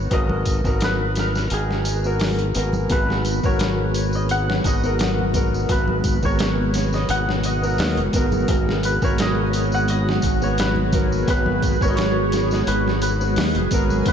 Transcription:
Already playing: felt piano B3 F#4 C#5, santur B4 C#5
0.10 fingered electric bass G#1, felt piano B3 F#4 A#4, santur D#5, kick, closed hi-hat, tambourine
0.29 low conga
0.45 kick, closed hi-hat, tambourine
0.64 fingered electric bass G#1, felt piano B3 F#4 A#4, kick, tambourine
0.81 santur B4, snare, closed hi-hat, tambourine
1.16 santur A#4, snare, closed hi-hat, tambourine
1.35 snare, tambourine
1.50 fingered electric bass G#1, santur G#4, closed hi-hat, tambourine
1.71 snare
1.85 closed hi-hat, tambourine
2.04 felt piano B3 F#4 A#4, tambourine
2.20 snare, open hi-hat, tambourine
2.39 closed hi-hat
2.54 fingered electric bass G#1, felt piano B3 F#4 A#4, closed hi-hat, tambourine
2.73 tambourine, low conga
2.90 fingered electric bass G#1, string machine G#3 B3 F#4, felt piano B3 F#4 B4, synth texture G#4, santur B4, kick, closed hi-hat, tambourine
3.10 snare
3.25 closed hi-hat, tambourine
3.43 fingered electric bass G#1, felt piano B3 F#4 A#4, santur C#5, kick, tambourine
3.59 snare, closed hi-hat, tambourine
3.94 closed hi-hat, tambourine
4.13 santur D#5, tambourine
4.29 santur F#5, closed hi-hat, tambourine
4.50 snare
4.64 fingered electric bass G#1, santur D#5, kick, closed hi-hat, tambourine
4.83 felt piano B3 F#4 A#4, tambourine
4.99 snare, closed hi-hat, tambourine
5.19 low conga
5.34 felt piano B3 F#4 A#4, kick, closed hi-hat, tambourine, low conga
5.54 tambourine
5.69 fingered electric bass G#1, felt piano B3 F#4 B4, santur B4, kick, closed hi-hat, tambourine
5.88 low conga
6.04 kick, closed hi-hat, tambourine
6.23 fingered electric bass G#1, felt piano B3 F#4 A#4, santur C#5, kick, tambourine
6.39 snare, closed hi-hat, tambourine
6.74 snare, closed hi-hat, tambourine
6.93 santur D#5, snare, tambourine
7.09 fingered electric bass G#1, santur F#5, closed hi-hat, tambourine
7.29 snare
7.43 santur D#5, closed hi-hat, tambourine
7.62 felt piano B3 F#4 A#4, tambourine
7.78 fingered electric bass D#2, snare, open hi-hat, tambourine
7.97 fingered electric bass F#1, closed hi-hat
8.13 fingered electric bass G#1, felt piano B3 F#4 A#4, kick, closed hi-hat, tambourine
8.32 tambourine, low conga
8.48 fingered electric bass G#1, felt piano B3 F#4 A#4, kick, closed hi-hat, tambourine
8.69 snare
8.83 santur B4, closed hi-hat, tambourine
9.02 fingered electric bass G#1, felt piano B3 F#4 A#4, santur C#5, kick, tambourine
9.18 santur D#5, snare, closed hi-hat, tambourine
9.53 closed hi-hat, tambourine
9.72 santur F#5, tambourine
9.88 santur D#5, closed hi-hat, tambourine
10.09 snare
10.22 fingered electric bass G#1, kick, closed hi-hat, tambourine
10.41 felt piano B3 F#4 B4, santur C#5, tambourine
10.58 santur B4, snare, closed hi-hat, tambourine
10.76 low conga
10.92 felt piano B3 F#4 A#4, kick, closed hi-hat, tambourine, low conga
11.12 tambourine
11.28 fingered electric bass G#1, felt piano B3 F#4 B4, santur B4, kick, closed hi-hat, tambourine
11.46 low conga
11.62 kick, closed hi-hat, tambourine
11.81 fingered electric bass G#1, felt piano B3 F#4 A#4, santur C#5, kick, tambourine
11.89 santur D#5
11.96 santur C#5, snare, closed hi-hat, tambourine
12.32 snare, closed hi-hat, tambourine
12.51 santur D#5, snare, tambourine
12.67 fingered electric bass G#1, santur B4, closed hi-hat, tambourine
12.88 snare
13.02 santur B4, closed hi-hat, tambourine
13.21 felt piano B3 F#4 B4, tambourine
13.36 fingered electric bass D#2, snare, open hi-hat, tambourine
13.55 fingered electric bass F#1, closed hi-hat
13.71 fingered electric bass G#1, felt piano B3 F#4 A#4, kick, closed hi-hat, tambourine
13.90 tambourine, low conga
14.06 fingered electric bass G#1, felt piano B3 F#4 B4, santur B4, string machine A#5, kick, closed hi-hat, tambourine

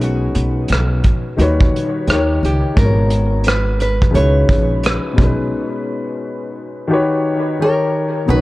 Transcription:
Already playing: upright bass B1, upright piano B2 G#3 C#4 D#4 B4
0.01 nylon-string guitar F#4, closed hi-hat
0.35 upright bass B1, closed hi-hat
0.68 upright bass B1, closed hi-hat
0.73 cross-stick
1.04 kick, closed hi-hat
1.37 upright bass D#2, upright piano D#3 G3 D#4 F#4, closed hi-hat
1.41 upright piano B4 C#5
1.61 kick
1.76 closed hi-hat
2.07 upright bass D#2, upright piano D#3 D#4 G4, cross-stick, closed hi-hat
2.12 upright piano A#4 C#5
2.43 upright bass C#2, nylon-string guitar G4, closed hi-hat
2.74 upright bass G#1, upright piano G#3 F#4, kick, closed hi-hat
2.79 upright piano B3 G#4, nylon-string guitar A#4
2.85 upright piano C#5
3.10 closed hi-hat
3.44 nylon-string guitar B4, closed hi-hat
3.48 cross-stick
3.80 nylon-string guitar B4, closed hi-hat
4.02 kick
4.11 upright bass C#2, upright piano C#3 G#3 D#4 E4
4.15 upright piano F#4 B4, nylon-string guitar C#5, closed hi-hat
4.49 upright bass A#1, kick, closed hi-hat
4.83 cross-stick, closed hi-hat
5.13 upright piano B2 G#3
5.18 upright bass B1, upright piano C#4 D#4, kick, closed hi-hat
5.24 upright piano B4
6.88 upright piano D#3 D#4 F#4 G4
6.92 upright piano B4 C#5
7.59 upright piano D#3 D#4 G4 A#4, nylon-string guitar A#4
7.64 upright piano C#5
8.25 upright bass B1, upright piano B2 B3, pipe organ B3 C#4 D#4
8.30 upright piano D#4 B4, nylon-string guitar B4
8.36 upright piano C#5

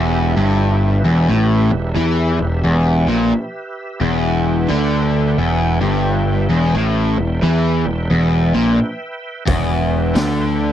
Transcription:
Already playing: picked electric bass E1, overdriven electric guitar E2, tonewheel organ E4 G4 B4 E5
0.37 picked electric bass G1, overdriven electric guitar G2
1.04 picked electric bass E1, overdriven electric guitar E2
1.29 picked electric bass A1, overdriven electric guitar A2, tonewheel organ G4 B4 E5
1.71 picked electric bass E1, overdriven electric guitar E2
1.96 picked electric bass E2, overdriven electric guitar E3
2.39 picked electric bass E1, overdriven electric guitar E2
2.64 picked electric bass E1, overdriven electric guitar E2
3.08 picked electric bass A#1, overdriven electric guitar A#2
4.01 picked electric bass E1, overdriven electric guitar E2, tonewheel organ B4 E5 G5
4.69 picked electric bass D2, overdriven electric guitar D3
5.38 picked electric bass E1, overdriven electric guitar E2
5.81 picked electric bass G1, overdriven electric guitar G2
6.49 picked electric bass E1, overdriven electric guitar E2
6.75 picked electric bass A1, overdriven electric guitar A2, tonewheel organ C5 F5 G#5
6.95 tonewheel organ B4 E5 G5
7.18 picked electric bass E1, overdriven electric guitar E2
7.43 picked electric bass E2, overdriven electric guitar E3
7.86 picked electric bass E1, overdriven electric guitar E2
8.10 picked electric bass E1, overdriven electric guitar E2
8.54 picked electric bass A#1, overdriven electric guitar A#2
9.47 picked electric bass E1, overdriven electric guitar E2, tonewheel organ B4 E5 G5, kick, open hi-hat
10.15 picked electric bass D2, overdriven electric guitar D3, snare, open hi-hat

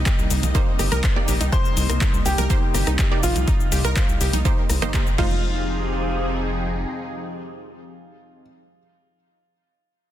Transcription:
Already playing: analog synth pad C3 G3 A#3 D#4 D#5, grand piano D#5
0.06 synth pluck G4, kick, clap, closed hi-hat, shaker
0.19 analog synth bass C2, shaker
0.30 analog synth bass C2, open hi-hat, shaker
0.43 analog synth bass C2, closed hi-hat, high conga, low conga, shaker
0.55 synth pluck A#3 D#4 G4 C5, kick, closed hi-hat, shaker
0.79 analog synth bass G1, synth pluck G4, cross-stick, open hi-hat, high conga, shaker
0.92 analog synth bass C2, synth pluck A#4, cross-stick, closed hi-hat, high conga, low conga, shaker
1.04 synth pluck C5, kick, clap, closed hi-hat, shaker
1.16 synth pluck A#3 D#4 G4 D5
1.28 analog synth bass A#1, synth pluck G4, open hi-hat, shaker
1.41 analog synth bass C2, synth pluck D#4, closed hi-hat, shaker
1.52 synth pluck G4, grand piano C5, kick, closed hi-hat, shaker
1.65 shaker
1.77 analog synth bass C2, open hi-hat, shaker
1.89 analog synth bass C2, cross-stick, closed hi-hat, shaker
2.01 synth pluck D#4, kick, clap, closed hi-hat, shaker
2.14 analog synth bass C2, shaker
2.26 analog synth bass C2, grand piano G4, synth pluck G4, open hi-hat, shaker
2.38 analog synth bass C2, synth pluck A#4, closed hi-hat, high conga, low conga, shaker
2.50 synth pluck A#3 D#4 G4 C5, kick, closed hi-hat, shaker
2.74 analog synth bass G1, synth pluck G4, cross-stick, open hi-hat, shaker
2.87 analog synth bass C2, synth pluck D#4, cross-stick, closed hi-hat, shaker
2.99 synth pluck G4, kick, clap, closed hi-hat, shaker
3.12 synth pluck A#3 D#4 G4 D5
3.23 analog synth bass A#1, grand piano F4, open hi-hat, shaker
3.36 analog synth bass C2, closed hi-hat, low conga, shaker
3.48 synth pluck D#4, kick, closed hi-hat, shaker
3.60 shaker
3.72 analog synth bass C2, synth pluck G4, open hi-hat, shaker
3.85 analog synth bass C2, synth pluck A#4, cross-stick, closed hi-hat, shaker
3.96 synth pluck C5, kick, clap, closed hi-hat, shaker
4.09 analog synth bass C2, shaker
4.21 analog synth bass C2, synth pluck G4, open hi-hat, shaker
4.33 analog synth bass C2, synth pluck D#4, closed hi-hat, high conga, low conga, shaker
4.45 synth pluck A#3 D#4 G4 C5, kick, closed hi-hat, shaker
4.69 analog synth bass C2, cross-stick, open hi-hat, high conga, shaker
4.82 analog synth bass G1, synth pluck A#3 D#4 G4 C5, cross-stick, closed hi-hat, high conga, low conga, shaker
4.94 synth pluck A#3 D#4 G4 C5, kick, clap, closed hi-hat, shaker
5.07 shaker
5.18 analog synth bass F1, analog synth pad F3 C4 D#4 G4 G#4, synth pluck G#3 D#4 F4 C5, grand piano F4, kick, crash
5.31 low conga

